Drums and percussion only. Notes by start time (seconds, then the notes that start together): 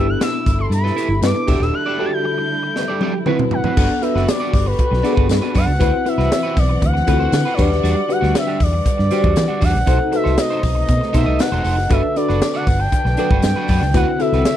0.21 snare, closed hi-hat, tambourine
0.46 kick, closed hi-hat, tambourine
0.72 closed hi-hat, tambourine
0.86 snare
0.98 closed hi-hat, tambourine
1.22 snare, closed hi-hat, tambourine
1.48 kick, tambourine, crash
1.62 snare
2.76 snare
3.01 high tom
3.26 mid tom
3.39 mid tom
3.51 floor tom
3.64 floor tom
3.77 kick, crash, tambourine
4.03 closed hi-hat
4.16 snare
4.28 snare, closed hi-hat, tambourine
4.53 kick, open hi-hat, tambourine
4.79 kick, closed hi-hat
4.93 snare
5.04 closed hi-hat, tambourine
5.17 kick
5.29 snare, closed hi-hat, tambourine
5.55 kick, open hi-hat, tambourine
5.81 kick, closed hi-hat, tambourine
6.06 closed hi-hat
6.19 snare
6.32 snare, closed hi-hat, tambourine
6.57 kick, open hi-hat, tambourine
6.82 kick, closed hi-hat
6.96 snare
7.07 kick, closed hi-hat, tambourine
7.32 snare, closed hi-hat, tambourine
7.58 kick, tambourine, crash
7.72 snare
7.85 closed hi-hat, tambourine
8.10 closed hi-hat
8.23 snare
8.35 snare, closed hi-hat, tambourine
8.60 kick, open hi-hat, tambourine
8.86 kick, closed hi-hat, tambourine
8.99 snare
9.11 closed hi-hat, tambourine
9.24 kick
9.36 snare, closed hi-hat, tambourine
9.61 kick, open hi-hat, tambourine
9.75 snare
9.87 kick, closed hi-hat, tambourine
10.13 closed hi-hat
10.26 snare
10.38 snare, closed hi-hat, tambourine
10.63 kick, open hi-hat, tambourine
10.88 kick, closed hi-hat, tambourine
11.03 snare
11.14 kick, closed hi-hat, tambourine
11.39 snare, closed hi-hat, tambourine
11.64 open hi-hat, tambourine
11.78 snare
11.90 kick, closed hi-hat, tambourine
12.16 closed hi-hat, tambourine
12.29 snare
12.42 snare, closed hi-hat, tambourine
12.67 kick, open hi-hat, tambourine
12.92 kick, closed hi-hat
13.06 snare
13.17 closed hi-hat, tambourine
13.31 kick
13.42 snare, closed hi-hat, tambourine
13.68 kick, open hi-hat, tambourine
13.82 snare
13.94 kick, closed hi-hat, tambourine
14.20 closed hi-hat, tambourine
14.32 snare
14.45 snare, closed hi-hat, tambourine